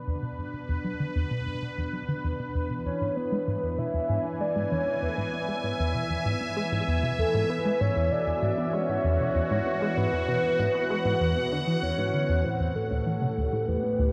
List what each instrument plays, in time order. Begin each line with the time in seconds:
Already playing: analog synth pad B2 B3 D4 B4
0.07 synth arpeggio sound E2
0.23 synth arpeggio sound B2
0.38 synth arpeggio sound F#2
0.54 synth arpeggio sound B2
0.69 synth arpeggio sound E2
0.84 synth arpeggio sound F#3
1.00 synth arpeggio sound D3
1.16 synth arpeggio sound E2
1.31 synth arpeggio sound B2
1.47 synth arpeggio sound F#2
1.62 synth arpeggio sound B2
1.78 synth arpeggio sound E2
1.93 synth arpeggio sound F#3
2.09 synth arpeggio sound D3
2.24 synth arpeggio sound E2
2.40 synth arpeggio sound B2
2.54 synth arpeggio sound E2, analog synth pad E3
2.70 synth arpeggio sound B2
2.86 synth arpeggio sound E2, soft synth lead C#5
3.01 synth arpeggio sound G#2
3.17 synth arpeggio sound B3, soft synth lead B4
3.32 synth arpeggio sound G#3
3.48 synth arpeggio sound G#2
3.63 synth arpeggio sound E2
3.79 synth arpeggio sound B2, soft synth lead E5
3.90 analog synth pad G#5
3.94 synth arpeggio sound E2
4.09 synth arpeggio sound G#2
4.25 synth arpeggio sound B3
4.40 synth arpeggio sound G#3, soft synth lead D5
4.56 synth arpeggio sound G#2
4.72 synth arpeggio sound E2, soft synth lead C#5
4.87 synth arpeggio sound B2
5.02 synth arpeggio sound E2, soft synth lead B4, analog synth pad E5
5.09 soft synth lead A4
5.16 synth arpeggio sound G#2, soft synth lead B4
5.33 synth arpeggio sound B3
5.48 synth arpeggio sound G#3
5.64 synth arpeggio sound G#2
5.79 synth arpeggio sound E2
5.95 synth arpeggio sound B2
6.10 synth arpeggio sound E2
6.26 synth arpeggio sound G#2
6.41 synth arpeggio sound B3
6.57 synth arpeggio sound G#3
6.72 synth arpeggio sound G#2
6.88 synth arpeggio sound E2
7.03 synth arpeggio sound B2
7.19 synth arpeggio sound E2, soft synth lead A4
7.34 synth arpeggio sound G#2
7.50 synth arpeggio sound B3, soft synth lead B4
7.66 synth arpeggio sound G#3
7.81 synth arpeggio sound G#2, soft synth lead C#5
7.96 synth arpeggio sound E2
8.11 synth arpeggio sound B2, analog synth pad F#4, soft synth lead D5
8.27 synth arpeggio sound E2
8.42 synth arpeggio sound G#2, soft synth lead D5
8.58 synth arpeggio sound B3
8.73 synth arpeggio sound G#3, soft synth lead C#5
8.89 synth arpeggio sound G#2
9.04 synth arpeggio sound E2
9.20 synth arpeggio sound B2
9.35 synth arpeggio sound E2
9.45 analog synth pad F#5
9.51 synth arpeggio sound G#2
9.66 synth arpeggio sound B3
9.82 synth arpeggio sound G#3
9.97 synth arpeggio sound G#2, soft synth lead B4
10.13 synth arpeggio sound E2
10.29 synth arpeggio sound B2
10.44 synth arpeggio sound E2
10.59 synth arpeggio sound G#2
10.75 synth arpeggio sound B3
10.90 synth arpeggio sound G#3
11.05 synth arpeggio sound G#2
11.21 synth arpeggio sound E2
11.37 synth arpeggio sound B2
11.52 synth arpeggio sound D3
11.67 synth arpeggio sound E3
11.83 synth arpeggio sound E2, soft synth lead C#5
11.98 synth arpeggio sound G#2
12.14 synth arpeggio sound D3
12.29 synth arpeggio sound E2
12.45 analog synth bass A1, synth arpeggio sound A2, analog synth pad A2, soft synth lead C5
12.60 synth arpeggio sound E2
12.73 synth arpeggio sound A2, analog synth pad G4, soft synth lead A4
12.91 synth arpeggio sound D2
13.06 synth arpeggio sound E3
13.22 synth arpeggio sound C3
13.34 synth arpeggio sound D2, analog synth pad A3
13.53 synth arpeggio sound A2
13.68 synth arpeggio sound E2, soft synth lead B4
13.83 synth arpeggio sound A2
13.99 synth arpeggio sound D2